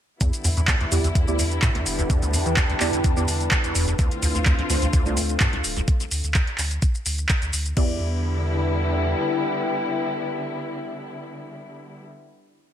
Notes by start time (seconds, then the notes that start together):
0.21 E2 D3 G3 B3 E4, kick, closed hi-hat, shaker
0.33 closed hi-hat, shaker
0.44 E2, open hi-hat, shaker
0.57 E2, closed hi-hat, shaker
0.67 E2 B4, kick, clap, closed hi-hat, shaker
0.81 D2, closed hi-hat
0.92 E2 B3 E4 G4 D5, open hi-hat, shaker
1.04 D2, closed hi-hat, shaker
1.15 E2 E5, kick, closed hi-hat, shaker
1.28 D2 B3 E4 G4 D5, shaker
1.39 E2, open hi-hat, shaker
1.52 closed hi-hat, shaker
1.61 A2 G5, kick, clap, closed hi-hat, shaker
1.75 D2 E2, closed hi-hat
1.86 E1, open hi-hat, shaker
1.99 D2, closed hi-hat, shaker
2.10 E2 D4, kick, closed hi-hat, shaker
2.22 D2, closed hi-hat, shaker
2.33 E2, open hi-hat, shaker
2.46 E2 E3, closed hi-hat, shaker
2.57 kick, clap, closed hi-hat, shaker
2.70 D2, closed hi-hat
2.80 E2 B3 E4 G4 D5, clap, open hi-hat, shaker
2.93 E2, closed hi-hat, shaker
3.04 E2, kick, closed hi-hat, shaker
3.17 E2 B3 E4 G4 D5, shaker
3.28 E2, open hi-hat, shaker
3.41 closed hi-hat, shaker
3.51 kick, clap, closed hi-hat, shaker
3.64 E2, closed hi-hat, shaker
3.75 E1 E2, open hi-hat, shaker
3.88 E2, closed hi-hat, shaker
3.99 D2 A3 C4 D4 F4, kick, closed hi-hat, shaker
4.11 closed hi-hat, shaker
4.22 D2, open hi-hat, shaker
4.35 D2, closed hi-hat, shaker
4.46 D2, kick, clap, closed hi-hat, shaker
4.59 C2, closed hi-hat
4.70 D2 A3 D4 F4 C5, open hi-hat, shaker
4.77 A4
4.82 C2 F5, closed hi-hat, shaker
4.93 D2, kick, closed hi-hat, shaker
5.06 C2 A3 D4 F4 C5, shaker
5.17 D2, open hi-hat, shaker
5.29 closed hi-hat, shaker
5.40 G2, kick, clap, closed hi-hat, shaker
5.53 C2 D2, closed hi-hat
5.64 D1, open hi-hat, shaker
5.77 C2, closed hi-hat, shaker
5.88 kick, closed hi-hat, shaker
6.00 closed hi-hat, shaker
6.11 D2, open hi-hat, shaker
6.24 D2, closed hi-hat, shaker
6.34 kick, clap, closed hi-hat, shaker
6.47 closed hi-hat
6.58 D2, clap, open hi-hat, shaker
6.71 closed hi-hat, shaker
6.82 kick, closed hi-hat, shaker
6.95 shaker
7.06 D2, open hi-hat, shaker
7.18 closed hi-hat, shaker
7.29 kick, clap, closed hi-hat, shaker
7.42 D2, closed hi-hat, shaker
7.53 D2, open hi-hat, shaker
7.66 closed hi-hat, shaker
7.77 E2 D3 G3 B3 E4 G4 D5, kick, crash
7.85 B4
7.92 E5
7.99 G5